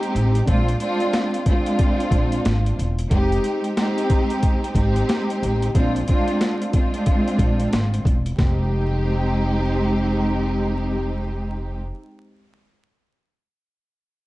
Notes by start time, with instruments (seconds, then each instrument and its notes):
Already playing: string section G#3 C4 D#4 G4
0.03 closed hi-hat
0.15 upright bass A1, closed hi-hat
0.35 closed hi-hat
0.45 upright bass A#1, string section G#3 C4 D4 F4, kick, closed hi-hat
0.68 closed hi-hat
0.78 string section G#3 C4 D4 F4, closed hi-hat
1.00 closed hi-hat
1.13 snare, closed hi-hat
1.34 closed hi-hat
1.46 string section G#3 C4 D4 F4, kick, closed hi-hat
1.66 closed hi-hat
1.79 kick, closed hi-hat
2.00 closed hi-hat
2.11 upright bass A#1, kick, closed hi-hat
2.32 closed hi-hat
2.45 upright bass G#1, snare, closed hi-hat
2.66 closed hi-hat
2.79 upright bass E1, closed hi-hat
2.99 closed hi-hat
3.10 upright bass F1, string section G#3 C4 D#4 G4, kick, closed hi-hat
3.32 closed hi-hat
3.44 closed hi-hat
3.64 closed hi-hat
3.77 string section G#3 C4 D#4 G4, snare, closed hi-hat
3.98 closed hi-hat
4.10 kick, closed hi-hat
4.30 closed hi-hat
4.43 kick, closed hi-hat
4.64 closed hi-hat
4.74 upright bass G#1, string section G#3 C4 D#4 G4, kick, closed hi-hat
4.96 closed hi-hat
5.09 snare, closed hi-hat
5.30 closed hi-hat
5.42 upright bass A1, closed hi-hat
5.62 closed hi-hat
5.73 upright bass A#1, string section G#3 C4 D4 F4, kick, closed hi-hat
5.96 closed hi-hat
6.06 string section G#3 C4 D4 F4, kick, closed hi-hat
6.28 closed hi-hat
6.41 snare, closed hi-hat
6.62 closed hi-hat
6.73 string section G#3 C4 D4 F4, kick, closed hi-hat
6.94 closed hi-hat
7.06 kick, closed hi-hat
7.28 closed hi-hat
7.39 upright bass A#1, kick, closed hi-hat
7.60 closed hi-hat
7.73 upright bass G#1, snare, closed hi-hat
7.94 closed hi-hat
8.05 upright bass E1, kick, closed hi-hat
8.26 closed hi-hat
8.38 upright bass F1, string section G#3 C4 D#4 G4, kick, snare